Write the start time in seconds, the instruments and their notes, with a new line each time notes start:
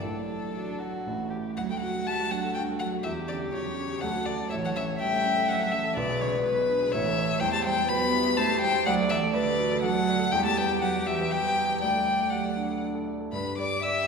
0.02 grand piano A1 A2, cello F#3, violin D4 A4
0.55 grand piano A3 D4 F#4, violin D4
0.79 violin F#4
1.06 grand piano A1 A2 A3 C#4 E4, cello E3
1.30 violin G4
1.57 grand piano D2, cello F#3, violin F#4 F#5
1.69 cello G3, grand piano A4, violin G5
1.80 cello F#3, grand piano F#4, violin F#5
1.95 grand piano A3
2.05 grand piano G3, cello A3, violin A5
2.19 grand piano A3
2.29 cello F#3, grand piano D4, violin F#5
2.44 grand piano A4
2.54 cello G3, grand piano D4, violin G5
2.69 grand piano A4
2.79 cello F#3, grand piano F#4, violin F#5
2.93 grand piano A4
3.03 grand piano E2, cello E3, violin G4 E5
3.17 grand piano G4
3.28 cello D3, grand piano C#4, violin D5
3.42 grand piano G3
3.52 cello C#3, grand piano F#3, violin C#5
3.66 grand piano G3
3.78 grand piano C#4
3.90 grand piano G4
4.01 grand piano D2, cello F#3, violin A4 F#5
4.15 grand piano F#4
4.26 cello D3, grand piano A4, violin D5
4.40 grand piano F#3
4.50 grand piano A1, cello E3, violin C#5 E5
4.65 cello F#3, grand piano A4, violin F#5
4.76 cello E3, grand piano C#4, violin E5
4.89 grand piano A3
4.99 cello G3, grand piano G3, violin E5 G5
5.13 grand piano A3
5.25 grand piano C#4
5.37 grand piano A4
5.48 cello F#3, grand piano C#4, violin F#5
5.60 grand piano A4
5.72 cello E3, grand piano C#4, violin E5
5.84 grand piano A4
5.95 grand piano B1, cello D3, violin B4 D5
6.09 grand piano G#4
6.20 cello C#3, violin C#5, grand piano D5
6.33 grand piano G#3
6.44 cello B2, grand piano F#3, violin B4
6.58 grand piano G#3
6.69 grand piano D4
6.82 grand piano G#4
6.92 grand piano A1, cello E3, violin C#5 E5
7.05 grand piano A4
7.19 grand piano C#5
7.29 grand piano A3
7.40 grand piano E2, cello G3, violin C5 G5
7.53 cello A3, grand piano G4, violin A5
7.65 cello G3, grand piano C5, violin G5
7.77 grand piano G3
7.88 grand piano F#3, cello B3, violin B4 B5
8.02 grand piano G3
8.14 grand piano E4
8.26 grand piano G4
8.37 cello A3, grand piano E4, violin C5 A5
8.50 grand piano G4
8.61 cello G3, grand piano C5, violin G5
8.74 grand piano G4
8.85 grand piano D2, cello F#3, violin D5 F#5
8.99 grand piano A4
9.09 cello E3, grand piano D5, violin E5
9.23 grand piano A3
9.34 cello D3, grand piano G3, violin B4 D5
9.48 grand piano A3
9.59 grand piano F#4
9.72 grand piano A4
9.83 cello F#3, grand piano F#4, violin A4 F#5
9.95 grand piano A4
10.08 grand piano D5
10.19 grand piano A4
10.32 grand piano E2, cello G3, violin G4 G5
10.45 cello A3, grand piano G4, violin A5
10.57 cello G3, grand piano B4, violin G5
10.70 grand piano G3
10.82 cello F#3, grand piano F#3, violin F#5
10.96 grand piano G3
11.07 cello E3, grand piano G4, violin E5
11.21 grand piano B4
11.31 cello G3, grand piano G4, violin G5
11.45 grand piano B4
11.58 grand piano G4
11.70 grand piano B4
11.81 grand piano D2, cello G3, violin D5 G5
11.94 grand piano A4
12.06 grand piano D5
12.19 grand piano A3
12.30 cello F#3, grand piano G3, violin F#5
12.44 grand piano A3
12.56 grand piano D4
12.69 grand piano A4
12.82 grand piano D4
12.95 grand piano A4
13.08 grand piano D5
13.21 grand piano A4
13.32 grand piano G2, violin B4 B5
13.57 grand piano G3, violin D5 D6
13.82 cello G4, grand piano D5, violin E5 E6